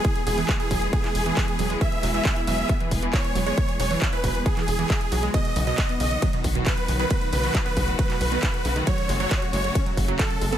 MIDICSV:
0, 0, Header, 1, 6, 480
1, 0, Start_track
1, 0, Key_signature, 4, "major"
1, 0, Tempo, 441176
1, 51, Time_signature, 4, 2, 24, 8
1, 11510, End_track
2, 0, Start_track
2, 0, Title_t, "Supersaw synth"
2, 0, Program_c, 0, 81
2, 0, Note_on_c, 0, 68, 96
2, 205, Note_off_c, 0, 68, 0
2, 292, Note_on_c, 0, 68, 92
2, 566, Note_off_c, 0, 68, 0
2, 652, Note_on_c, 0, 68, 99
2, 925, Note_off_c, 0, 68, 0
2, 1011, Note_on_c, 0, 68, 98
2, 1875, Note_off_c, 0, 68, 0
2, 1972, Note_on_c, 0, 76, 103
2, 2246, Note_off_c, 0, 76, 0
2, 2332, Note_on_c, 0, 76, 97
2, 2606, Note_off_c, 0, 76, 0
2, 2693, Note_on_c, 0, 76, 92
2, 2966, Note_off_c, 0, 76, 0
2, 3410, Note_on_c, 0, 73, 94
2, 3685, Note_off_c, 0, 73, 0
2, 3770, Note_on_c, 0, 73, 97
2, 4045, Note_off_c, 0, 73, 0
2, 4131, Note_on_c, 0, 73, 97
2, 4405, Note_off_c, 0, 73, 0
2, 4491, Note_on_c, 0, 71, 94
2, 4765, Note_off_c, 0, 71, 0
2, 4850, Note_on_c, 0, 68, 99
2, 5715, Note_off_c, 0, 68, 0
2, 5810, Note_on_c, 0, 75, 101
2, 6085, Note_off_c, 0, 75, 0
2, 6171, Note_on_c, 0, 75, 94
2, 6445, Note_off_c, 0, 75, 0
2, 6531, Note_on_c, 0, 75, 96
2, 6805, Note_off_c, 0, 75, 0
2, 7253, Note_on_c, 0, 71, 95
2, 7526, Note_off_c, 0, 71, 0
2, 7611, Note_on_c, 0, 71, 96
2, 7885, Note_off_c, 0, 71, 0
2, 7971, Note_on_c, 0, 71, 93
2, 8245, Note_off_c, 0, 71, 0
2, 8333, Note_on_c, 0, 71, 95
2, 8606, Note_off_c, 0, 71, 0
2, 8692, Note_on_c, 0, 71, 99
2, 9555, Note_off_c, 0, 71, 0
2, 9650, Note_on_c, 0, 73, 101
2, 9925, Note_off_c, 0, 73, 0
2, 10011, Note_on_c, 0, 73, 94
2, 10285, Note_off_c, 0, 73, 0
2, 10370, Note_on_c, 0, 73, 97
2, 10645, Note_off_c, 0, 73, 0
2, 11091, Note_on_c, 0, 69, 95
2, 11365, Note_off_c, 0, 69, 0
2, 11451, Note_on_c, 0, 69, 93
2, 11510, Note_off_c, 0, 69, 0
2, 11510, End_track
3, 0, Start_track
3, 0, Title_t, "String section"
3, 0, Program_c, 1, 48
3, 0, Note_on_c, 1, 52, 81
3, 0, Note_on_c, 1, 56, 75
3, 0, Note_on_c, 1, 59, 73
3, 0, Note_on_c, 1, 68, 91
3, 5767, Note_off_c, 1, 52, 0
3, 5767, Note_off_c, 1, 56, 0
3, 5768, Note_off_c, 1, 68, 0
3, 5812, Note_on_c, 1, 51, 82
3, 5813, Note_on_c, 1, 54, 78
3, 5813, Note_on_c, 1, 66, 93
3, 7687, Note_off_c, 1, 59, 0
3, 7730, Note_on_c, 1, 57, 76
3, 9613, Note_off_c, 1, 51, 0
3, 9613, Note_off_c, 1, 54, 0
3, 9650, Note_on_c, 1, 49, 84
3, 9650, Note_on_c, 1, 54, 75
3, 11510, Note_off_c, 1, 49, 0
3, 11510, Note_off_c, 1, 54, 0
3, 11510, Note_off_c, 1, 57, 0
3, 11510, Note_off_c, 1, 66, 0
3, 11510, End_track
4, 0, Start_track
4, 0, Title_t, "Synth pluck"
4, 0, Program_c, 2, 84
4, 49, Note_on_c, 2, 52, 88
4, 120, Note_off_c, 2, 52, 0
4, 290, Note_on_c, 2, 54, 74
4, 337, Note_off_c, 2, 54, 0
4, 409, Note_on_c, 2, 52, 107
4, 480, Note_off_c, 2, 52, 0
4, 650, Note_on_c, 2, 64, 76
4, 678, Note_off_c, 2, 64, 0
4, 769, Note_on_c, 2, 54, 77
4, 840, Note_off_c, 2, 54, 0
4, 1009, Note_on_c, 2, 59, 82
4, 1057, Note_off_c, 2, 59, 0
4, 1129, Note_on_c, 2, 52, 77
4, 1200, Note_off_c, 2, 52, 0
4, 1370, Note_on_c, 2, 52, 105
4, 1441, Note_off_c, 2, 52, 0
4, 1490, Note_on_c, 2, 52, 85
4, 1561, Note_off_c, 2, 52, 0
4, 1729, Note_on_c, 2, 54, 76
4, 1800, Note_off_c, 2, 54, 0
4, 1850, Note_on_c, 2, 56, 109
4, 1921, Note_off_c, 2, 56, 0
4, 1970, Note_on_c, 2, 52, 84
4, 2041, Note_off_c, 2, 52, 0
4, 2210, Note_on_c, 2, 54, 77
4, 2257, Note_off_c, 2, 54, 0
4, 2332, Note_on_c, 2, 52, 102
4, 2401, Note_off_c, 2, 52, 0
4, 2571, Note_on_c, 2, 64, 74
4, 2599, Note_off_c, 2, 64, 0
4, 2691, Note_on_c, 2, 54, 77
4, 2761, Note_off_c, 2, 54, 0
4, 2932, Note_on_c, 2, 59, 83
4, 2978, Note_off_c, 2, 59, 0
4, 3051, Note_on_c, 2, 52, 78
4, 3121, Note_off_c, 2, 52, 0
4, 3292, Note_on_c, 2, 52, 106
4, 3361, Note_off_c, 2, 52, 0
4, 3410, Note_on_c, 2, 52, 82
4, 3481, Note_off_c, 2, 52, 0
4, 3650, Note_on_c, 2, 54, 76
4, 3721, Note_off_c, 2, 54, 0
4, 3769, Note_on_c, 2, 56, 107
4, 3840, Note_off_c, 2, 56, 0
4, 3891, Note_on_c, 2, 52, 86
4, 3961, Note_off_c, 2, 52, 0
4, 4129, Note_on_c, 2, 54, 75
4, 4177, Note_off_c, 2, 54, 0
4, 4250, Note_on_c, 2, 52, 104
4, 4321, Note_off_c, 2, 52, 0
4, 4490, Note_on_c, 2, 64, 76
4, 4518, Note_off_c, 2, 64, 0
4, 4610, Note_on_c, 2, 54, 79
4, 4680, Note_off_c, 2, 54, 0
4, 4851, Note_on_c, 2, 59, 80
4, 4898, Note_off_c, 2, 59, 0
4, 4970, Note_on_c, 2, 52, 79
4, 5040, Note_off_c, 2, 52, 0
4, 5209, Note_on_c, 2, 52, 105
4, 5280, Note_off_c, 2, 52, 0
4, 5331, Note_on_c, 2, 52, 84
4, 5401, Note_off_c, 2, 52, 0
4, 5571, Note_on_c, 2, 54, 80
4, 5641, Note_off_c, 2, 54, 0
4, 5690, Note_on_c, 2, 56, 103
4, 5760, Note_off_c, 2, 56, 0
4, 5808, Note_on_c, 2, 47, 86
4, 5880, Note_off_c, 2, 47, 0
4, 6050, Note_on_c, 2, 49, 74
4, 6097, Note_off_c, 2, 49, 0
4, 6169, Note_on_c, 2, 47, 106
4, 6240, Note_off_c, 2, 47, 0
4, 6410, Note_on_c, 2, 59, 78
4, 6438, Note_off_c, 2, 59, 0
4, 6530, Note_on_c, 2, 49, 74
4, 6600, Note_off_c, 2, 49, 0
4, 6768, Note_on_c, 2, 54, 85
4, 6816, Note_off_c, 2, 54, 0
4, 6890, Note_on_c, 2, 47, 80
4, 6961, Note_off_c, 2, 47, 0
4, 7130, Note_on_c, 2, 47, 102
4, 7201, Note_off_c, 2, 47, 0
4, 7250, Note_on_c, 2, 47, 88
4, 7321, Note_off_c, 2, 47, 0
4, 7490, Note_on_c, 2, 49, 77
4, 7561, Note_off_c, 2, 49, 0
4, 7610, Note_on_c, 2, 51, 103
4, 7681, Note_off_c, 2, 51, 0
4, 7730, Note_on_c, 2, 47, 84
4, 7801, Note_off_c, 2, 47, 0
4, 7970, Note_on_c, 2, 49, 77
4, 8017, Note_off_c, 2, 49, 0
4, 8089, Note_on_c, 2, 47, 105
4, 8160, Note_off_c, 2, 47, 0
4, 8328, Note_on_c, 2, 59, 75
4, 8358, Note_off_c, 2, 59, 0
4, 8448, Note_on_c, 2, 49, 79
4, 8520, Note_off_c, 2, 49, 0
4, 8689, Note_on_c, 2, 54, 84
4, 8737, Note_off_c, 2, 54, 0
4, 8809, Note_on_c, 2, 47, 78
4, 8880, Note_off_c, 2, 47, 0
4, 9050, Note_on_c, 2, 47, 104
4, 9120, Note_off_c, 2, 47, 0
4, 9170, Note_on_c, 2, 47, 86
4, 9241, Note_off_c, 2, 47, 0
4, 9411, Note_on_c, 2, 49, 78
4, 9481, Note_off_c, 2, 49, 0
4, 9530, Note_on_c, 2, 51, 104
4, 9601, Note_off_c, 2, 51, 0
4, 9651, Note_on_c, 2, 54, 86
4, 9721, Note_off_c, 2, 54, 0
4, 9889, Note_on_c, 2, 56, 77
4, 9937, Note_off_c, 2, 56, 0
4, 10010, Note_on_c, 2, 54, 105
4, 10081, Note_off_c, 2, 54, 0
4, 10251, Note_on_c, 2, 66, 80
4, 10279, Note_off_c, 2, 66, 0
4, 10370, Note_on_c, 2, 56, 79
4, 10441, Note_off_c, 2, 56, 0
4, 10610, Note_on_c, 2, 61, 84
4, 10657, Note_off_c, 2, 61, 0
4, 10730, Note_on_c, 2, 54, 77
4, 10801, Note_off_c, 2, 54, 0
4, 10970, Note_on_c, 2, 54, 107
4, 11041, Note_off_c, 2, 54, 0
4, 11089, Note_on_c, 2, 54, 84
4, 11160, Note_off_c, 2, 54, 0
4, 11330, Note_on_c, 2, 56, 76
4, 11401, Note_off_c, 2, 56, 0
4, 11450, Note_on_c, 2, 59, 103
4, 11510, Note_off_c, 2, 59, 0
4, 11510, End_track
5, 0, Start_track
5, 0, Title_t, "Analog synth bass"
5, 0, Program_c, 3, 38
5, 290, Note_on_c, 3, 28, 100
5, 478, Note_off_c, 3, 28, 0
5, 771, Note_on_c, 3, 28, 88
5, 958, Note_off_c, 3, 28, 0
5, 1252, Note_on_c, 3, 28, 81
5, 1438, Note_off_c, 3, 28, 0
5, 1732, Note_on_c, 3, 28, 81
5, 1918, Note_off_c, 3, 28, 0
5, 2212, Note_on_c, 3, 28, 103
5, 2398, Note_off_c, 3, 28, 0
5, 2691, Note_on_c, 3, 28, 89
5, 2878, Note_off_c, 3, 28, 0
5, 3170, Note_on_c, 3, 28, 83
5, 3358, Note_off_c, 3, 28, 0
5, 3650, Note_on_c, 3, 28, 80
5, 3837, Note_off_c, 3, 28, 0
5, 4129, Note_on_c, 3, 28, 105
5, 4317, Note_off_c, 3, 28, 0
5, 4611, Note_on_c, 3, 28, 85
5, 4798, Note_off_c, 3, 28, 0
5, 5090, Note_on_c, 3, 28, 94
5, 5278, Note_off_c, 3, 28, 0
5, 5570, Note_on_c, 3, 35, 95
5, 5757, Note_off_c, 3, 35, 0
5, 6050, Note_on_c, 3, 35, 105
5, 6238, Note_off_c, 3, 35, 0
5, 6531, Note_on_c, 3, 35, 86
5, 6718, Note_off_c, 3, 35, 0
5, 7011, Note_on_c, 3, 35, 82
5, 7198, Note_off_c, 3, 35, 0
5, 7491, Note_on_c, 3, 35, 83
5, 7678, Note_off_c, 3, 35, 0
5, 7971, Note_on_c, 3, 35, 103
5, 8158, Note_off_c, 3, 35, 0
5, 8451, Note_on_c, 3, 35, 88
5, 8638, Note_off_c, 3, 35, 0
5, 8931, Note_on_c, 3, 35, 82
5, 9118, Note_off_c, 3, 35, 0
5, 9411, Note_on_c, 3, 35, 81
5, 9598, Note_off_c, 3, 35, 0
5, 9891, Note_on_c, 3, 30, 100
5, 10078, Note_off_c, 3, 30, 0
5, 10371, Note_on_c, 3, 30, 87
5, 10558, Note_off_c, 3, 30, 0
5, 10851, Note_on_c, 3, 30, 85
5, 11038, Note_off_c, 3, 30, 0
5, 11331, Note_on_c, 3, 30, 83
5, 11510, Note_off_c, 3, 30, 0
5, 11510, End_track
6, 0, Start_track
6, 0, Title_t, "Drums"
6, 49, Note_on_c, 9, 42, 81
6, 51, Note_on_c, 9, 36, 125
6, 158, Note_off_c, 9, 42, 0
6, 160, Note_off_c, 9, 36, 0
6, 170, Note_on_c, 9, 42, 52
6, 278, Note_off_c, 9, 42, 0
6, 290, Note_on_c, 9, 46, 114
6, 399, Note_off_c, 9, 46, 0
6, 410, Note_on_c, 9, 46, 66
6, 519, Note_off_c, 9, 46, 0
6, 530, Note_on_c, 9, 39, 123
6, 530, Note_on_c, 9, 42, 85
6, 531, Note_on_c, 9, 36, 124
6, 639, Note_off_c, 9, 36, 0
6, 639, Note_off_c, 9, 39, 0
6, 639, Note_off_c, 9, 42, 0
6, 651, Note_on_c, 9, 42, 55
6, 759, Note_off_c, 9, 42, 0
6, 771, Note_on_c, 9, 36, 66
6, 771, Note_on_c, 9, 46, 110
6, 880, Note_off_c, 9, 36, 0
6, 880, Note_off_c, 9, 46, 0
6, 892, Note_on_c, 9, 42, 55
6, 1000, Note_off_c, 9, 42, 0
6, 1011, Note_on_c, 9, 36, 117
6, 1012, Note_on_c, 9, 42, 80
6, 1120, Note_off_c, 9, 36, 0
6, 1120, Note_off_c, 9, 42, 0
6, 1131, Note_on_c, 9, 39, 39
6, 1131, Note_on_c, 9, 42, 53
6, 1240, Note_off_c, 9, 39, 0
6, 1240, Note_off_c, 9, 42, 0
6, 1251, Note_on_c, 9, 46, 106
6, 1360, Note_off_c, 9, 46, 0
6, 1371, Note_on_c, 9, 42, 54
6, 1480, Note_off_c, 9, 42, 0
6, 1491, Note_on_c, 9, 36, 127
6, 1492, Note_on_c, 9, 39, 123
6, 1492, Note_on_c, 9, 42, 79
6, 1599, Note_off_c, 9, 36, 0
6, 1600, Note_off_c, 9, 39, 0
6, 1600, Note_off_c, 9, 42, 0
6, 1611, Note_on_c, 9, 42, 54
6, 1720, Note_off_c, 9, 42, 0
6, 1731, Note_on_c, 9, 46, 109
6, 1839, Note_off_c, 9, 46, 0
6, 1851, Note_on_c, 9, 42, 56
6, 1959, Note_off_c, 9, 42, 0
6, 1970, Note_on_c, 9, 36, 127
6, 1971, Note_on_c, 9, 42, 79
6, 2079, Note_off_c, 9, 36, 0
6, 2080, Note_off_c, 9, 42, 0
6, 2091, Note_on_c, 9, 42, 50
6, 2200, Note_off_c, 9, 42, 0
6, 2211, Note_on_c, 9, 46, 115
6, 2320, Note_off_c, 9, 46, 0
6, 2331, Note_on_c, 9, 42, 54
6, 2440, Note_off_c, 9, 42, 0
6, 2450, Note_on_c, 9, 36, 127
6, 2451, Note_on_c, 9, 39, 126
6, 2451, Note_on_c, 9, 42, 83
6, 2559, Note_off_c, 9, 36, 0
6, 2560, Note_off_c, 9, 39, 0
6, 2560, Note_off_c, 9, 42, 0
6, 2571, Note_on_c, 9, 42, 53
6, 2680, Note_off_c, 9, 42, 0
6, 2692, Note_on_c, 9, 46, 111
6, 2801, Note_off_c, 9, 46, 0
6, 2811, Note_on_c, 9, 42, 52
6, 2920, Note_off_c, 9, 42, 0
6, 2930, Note_on_c, 9, 36, 123
6, 2931, Note_on_c, 9, 42, 80
6, 3039, Note_off_c, 9, 36, 0
6, 3040, Note_off_c, 9, 42, 0
6, 3051, Note_on_c, 9, 42, 52
6, 3160, Note_off_c, 9, 42, 0
6, 3171, Note_on_c, 9, 36, 67
6, 3171, Note_on_c, 9, 46, 111
6, 3279, Note_off_c, 9, 36, 0
6, 3279, Note_off_c, 9, 46, 0
6, 3291, Note_on_c, 9, 42, 55
6, 3400, Note_off_c, 9, 42, 0
6, 3410, Note_on_c, 9, 36, 127
6, 3411, Note_on_c, 9, 39, 120
6, 3411, Note_on_c, 9, 42, 73
6, 3519, Note_off_c, 9, 36, 0
6, 3520, Note_off_c, 9, 39, 0
6, 3520, Note_off_c, 9, 42, 0
6, 3530, Note_on_c, 9, 42, 52
6, 3639, Note_off_c, 9, 42, 0
6, 3650, Note_on_c, 9, 46, 111
6, 3759, Note_off_c, 9, 46, 0
6, 3770, Note_on_c, 9, 42, 55
6, 3879, Note_off_c, 9, 42, 0
6, 3890, Note_on_c, 9, 36, 124
6, 3890, Note_on_c, 9, 42, 79
6, 3999, Note_off_c, 9, 36, 0
6, 3999, Note_off_c, 9, 42, 0
6, 4010, Note_on_c, 9, 42, 49
6, 4119, Note_off_c, 9, 42, 0
6, 4131, Note_on_c, 9, 46, 117
6, 4240, Note_off_c, 9, 46, 0
6, 4250, Note_on_c, 9, 46, 66
6, 4359, Note_off_c, 9, 46, 0
6, 4371, Note_on_c, 9, 36, 123
6, 4371, Note_on_c, 9, 39, 126
6, 4371, Note_on_c, 9, 42, 77
6, 4479, Note_off_c, 9, 36, 0
6, 4480, Note_off_c, 9, 39, 0
6, 4480, Note_off_c, 9, 42, 0
6, 4491, Note_on_c, 9, 42, 52
6, 4600, Note_off_c, 9, 42, 0
6, 4611, Note_on_c, 9, 36, 65
6, 4611, Note_on_c, 9, 46, 113
6, 4719, Note_off_c, 9, 36, 0
6, 4720, Note_off_c, 9, 46, 0
6, 4732, Note_on_c, 9, 42, 52
6, 4841, Note_off_c, 9, 42, 0
6, 4851, Note_on_c, 9, 36, 121
6, 4852, Note_on_c, 9, 42, 75
6, 4959, Note_off_c, 9, 36, 0
6, 4960, Note_off_c, 9, 42, 0
6, 4972, Note_on_c, 9, 39, 37
6, 4972, Note_on_c, 9, 42, 52
6, 5081, Note_off_c, 9, 39, 0
6, 5081, Note_off_c, 9, 42, 0
6, 5091, Note_on_c, 9, 46, 106
6, 5200, Note_off_c, 9, 46, 0
6, 5211, Note_on_c, 9, 42, 52
6, 5320, Note_off_c, 9, 42, 0
6, 5331, Note_on_c, 9, 36, 127
6, 5331, Note_on_c, 9, 39, 116
6, 5331, Note_on_c, 9, 42, 74
6, 5439, Note_off_c, 9, 36, 0
6, 5439, Note_off_c, 9, 39, 0
6, 5439, Note_off_c, 9, 42, 0
6, 5450, Note_on_c, 9, 42, 50
6, 5559, Note_off_c, 9, 42, 0
6, 5569, Note_on_c, 9, 46, 107
6, 5678, Note_off_c, 9, 46, 0
6, 5690, Note_on_c, 9, 42, 52
6, 5798, Note_off_c, 9, 42, 0
6, 5810, Note_on_c, 9, 42, 78
6, 5810, Note_on_c, 9, 51, 69
6, 5811, Note_on_c, 9, 36, 115
6, 5919, Note_off_c, 9, 42, 0
6, 5919, Note_off_c, 9, 51, 0
6, 5920, Note_off_c, 9, 36, 0
6, 5930, Note_on_c, 9, 42, 50
6, 6039, Note_off_c, 9, 42, 0
6, 6050, Note_on_c, 9, 46, 112
6, 6158, Note_off_c, 9, 46, 0
6, 6169, Note_on_c, 9, 42, 53
6, 6278, Note_off_c, 9, 42, 0
6, 6289, Note_on_c, 9, 39, 120
6, 6289, Note_on_c, 9, 42, 79
6, 6289, Note_on_c, 9, 51, 68
6, 6291, Note_on_c, 9, 36, 117
6, 6398, Note_off_c, 9, 39, 0
6, 6398, Note_off_c, 9, 42, 0
6, 6398, Note_off_c, 9, 51, 0
6, 6400, Note_off_c, 9, 36, 0
6, 6410, Note_on_c, 9, 42, 54
6, 6519, Note_off_c, 9, 42, 0
6, 6529, Note_on_c, 9, 46, 109
6, 6638, Note_off_c, 9, 46, 0
6, 6650, Note_on_c, 9, 42, 51
6, 6759, Note_off_c, 9, 42, 0
6, 6770, Note_on_c, 9, 42, 79
6, 6770, Note_on_c, 9, 51, 69
6, 6771, Note_on_c, 9, 36, 114
6, 6878, Note_off_c, 9, 42, 0
6, 6878, Note_off_c, 9, 51, 0
6, 6880, Note_off_c, 9, 36, 0
6, 6890, Note_on_c, 9, 42, 50
6, 6999, Note_off_c, 9, 42, 0
6, 7010, Note_on_c, 9, 46, 104
6, 7011, Note_on_c, 9, 36, 67
6, 7118, Note_off_c, 9, 46, 0
6, 7120, Note_off_c, 9, 36, 0
6, 7130, Note_on_c, 9, 42, 54
6, 7239, Note_off_c, 9, 42, 0
6, 7251, Note_on_c, 9, 36, 127
6, 7251, Note_on_c, 9, 39, 113
6, 7251, Note_on_c, 9, 42, 77
6, 7251, Note_on_c, 9, 51, 67
6, 7360, Note_off_c, 9, 36, 0
6, 7360, Note_off_c, 9, 39, 0
6, 7360, Note_off_c, 9, 42, 0
6, 7360, Note_off_c, 9, 51, 0
6, 7371, Note_on_c, 9, 42, 52
6, 7480, Note_off_c, 9, 42, 0
6, 7490, Note_on_c, 9, 46, 107
6, 7599, Note_off_c, 9, 46, 0
6, 7611, Note_on_c, 9, 42, 53
6, 7720, Note_off_c, 9, 42, 0
6, 7730, Note_on_c, 9, 42, 78
6, 7730, Note_on_c, 9, 51, 73
6, 7731, Note_on_c, 9, 36, 117
6, 7839, Note_off_c, 9, 42, 0
6, 7839, Note_off_c, 9, 51, 0
6, 7840, Note_off_c, 9, 36, 0
6, 7851, Note_on_c, 9, 42, 52
6, 7959, Note_off_c, 9, 42, 0
6, 7971, Note_on_c, 9, 46, 102
6, 8080, Note_off_c, 9, 46, 0
6, 8090, Note_on_c, 9, 46, 61
6, 8199, Note_off_c, 9, 46, 0
6, 8211, Note_on_c, 9, 36, 117
6, 8211, Note_on_c, 9, 39, 122
6, 8211, Note_on_c, 9, 42, 81
6, 8211, Note_on_c, 9, 51, 72
6, 8320, Note_off_c, 9, 36, 0
6, 8320, Note_off_c, 9, 39, 0
6, 8320, Note_off_c, 9, 42, 0
6, 8320, Note_off_c, 9, 51, 0
6, 8331, Note_on_c, 9, 42, 54
6, 8440, Note_off_c, 9, 42, 0
6, 8450, Note_on_c, 9, 46, 104
6, 8451, Note_on_c, 9, 36, 60
6, 8559, Note_off_c, 9, 46, 0
6, 8560, Note_off_c, 9, 36, 0
6, 8571, Note_on_c, 9, 42, 53
6, 8680, Note_off_c, 9, 42, 0
6, 8691, Note_on_c, 9, 36, 116
6, 8692, Note_on_c, 9, 42, 80
6, 8692, Note_on_c, 9, 51, 71
6, 8800, Note_off_c, 9, 36, 0
6, 8801, Note_off_c, 9, 42, 0
6, 8801, Note_off_c, 9, 51, 0
6, 8811, Note_on_c, 9, 39, 36
6, 8811, Note_on_c, 9, 42, 53
6, 8920, Note_off_c, 9, 39, 0
6, 8920, Note_off_c, 9, 42, 0
6, 8931, Note_on_c, 9, 46, 99
6, 9040, Note_off_c, 9, 46, 0
6, 9051, Note_on_c, 9, 42, 53
6, 9160, Note_off_c, 9, 42, 0
6, 9170, Note_on_c, 9, 39, 114
6, 9170, Note_on_c, 9, 42, 77
6, 9170, Note_on_c, 9, 51, 67
6, 9171, Note_on_c, 9, 36, 120
6, 9279, Note_off_c, 9, 39, 0
6, 9279, Note_off_c, 9, 42, 0
6, 9279, Note_off_c, 9, 51, 0
6, 9280, Note_off_c, 9, 36, 0
6, 9291, Note_on_c, 9, 42, 55
6, 9400, Note_off_c, 9, 42, 0
6, 9410, Note_on_c, 9, 46, 102
6, 9519, Note_off_c, 9, 46, 0
6, 9531, Note_on_c, 9, 42, 56
6, 9640, Note_off_c, 9, 42, 0
6, 9651, Note_on_c, 9, 36, 115
6, 9651, Note_on_c, 9, 42, 82
6, 9651, Note_on_c, 9, 51, 72
6, 9759, Note_off_c, 9, 42, 0
6, 9759, Note_off_c, 9, 51, 0
6, 9760, Note_off_c, 9, 36, 0
6, 9771, Note_on_c, 9, 42, 55
6, 9879, Note_off_c, 9, 42, 0
6, 9891, Note_on_c, 9, 46, 104
6, 10000, Note_off_c, 9, 46, 0
6, 10011, Note_on_c, 9, 42, 56
6, 10120, Note_off_c, 9, 42, 0
6, 10131, Note_on_c, 9, 36, 113
6, 10131, Note_on_c, 9, 39, 121
6, 10131, Note_on_c, 9, 42, 86
6, 10131, Note_on_c, 9, 51, 74
6, 10240, Note_off_c, 9, 36, 0
6, 10240, Note_off_c, 9, 39, 0
6, 10240, Note_off_c, 9, 42, 0
6, 10240, Note_off_c, 9, 51, 0
6, 10251, Note_on_c, 9, 42, 55
6, 10360, Note_off_c, 9, 42, 0
6, 10371, Note_on_c, 9, 46, 100
6, 10480, Note_off_c, 9, 46, 0
6, 10492, Note_on_c, 9, 42, 57
6, 10600, Note_off_c, 9, 42, 0
6, 10611, Note_on_c, 9, 36, 114
6, 10612, Note_on_c, 9, 42, 86
6, 10612, Note_on_c, 9, 51, 76
6, 10720, Note_off_c, 9, 36, 0
6, 10721, Note_off_c, 9, 42, 0
6, 10721, Note_off_c, 9, 51, 0
6, 10732, Note_on_c, 9, 42, 55
6, 10841, Note_off_c, 9, 42, 0
6, 10851, Note_on_c, 9, 36, 63
6, 10852, Note_on_c, 9, 46, 99
6, 10960, Note_off_c, 9, 36, 0
6, 10961, Note_off_c, 9, 46, 0
6, 10972, Note_on_c, 9, 42, 57
6, 11080, Note_off_c, 9, 42, 0
6, 11091, Note_on_c, 9, 36, 124
6, 11092, Note_on_c, 9, 39, 113
6, 11092, Note_on_c, 9, 42, 79
6, 11092, Note_on_c, 9, 51, 68
6, 11200, Note_off_c, 9, 36, 0
6, 11201, Note_off_c, 9, 39, 0
6, 11201, Note_off_c, 9, 42, 0
6, 11201, Note_off_c, 9, 51, 0
6, 11212, Note_on_c, 9, 42, 54
6, 11321, Note_off_c, 9, 42, 0
6, 11332, Note_on_c, 9, 46, 104
6, 11440, Note_off_c, 9, 46, 0
6, 11452, Note_on_c, 9, 42, 58
6, 11510, Note_off_c, 9, 42, 0
6, 11510, End_track
0, 0, End_of_file